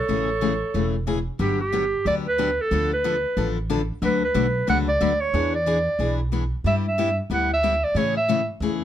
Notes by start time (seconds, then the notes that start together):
Already playing: A4 C#5
0.08 A1 C#3 E3 A3 C#4 G#4
0.41 C#3 E3 A3 C#4 G#4
0.74 E1 C#3 E3 A3 C#4 G#4
1.07 C#3 E3 A3 C#4 G#4
1.39 G1 D3 F#3 B3 D4 G4
1.61 G4
1.73 D3 F#3 B3 D4 G4
2.05 D2 D3 F#3 B3 D4 G4 D5
2.28 B4
2.38 D3 F#3 B3 D4 G4
2.61 A4
2.71 D2 D3 F3 B3 D4 A4
2.93 B4
3.04 D3 F3 B3 D4 A4
3.37 A1 D3 F3 B3 D4 A4
3.70 D3 F3 B3 D4 A4
4.02 D2 D3 F#3 A3 D4 F#4 B4
4.24 B4
4.34 B1 D3 F#3 A3 D4 F#4 B4
4.67 C#2 D3 F#3 A3 D4 F#4 B4 F#5
4.89 D5
5.01 D2 D3 F#3 A3 D4 F#4 B4
5.20 C#5
5.33 E2 E3 B3 D4 G#4
5.55 D5
5.66 E3 B3 D4 G#4
5.99 B1 E3 B3 D4 G#4
6.32 E3 B3 D4 G#4
6.64 G2 G3 B3 E4 G4 E5
6.88 E5
6.98 G3 B3 E4 G4
7.30 D2 G3 B3 E4 G4
7.34 F#5
7.53 E5
7.63 G3 B3 E4 G4
7.84 D5
7.95 A2 C#3 E3 A3 C#4 G#4 C#5
8.17 E5
8.29 C#3 E3 A3 C#4 G#4
8.60 E2 C#3 E3 A3 C#4 G#4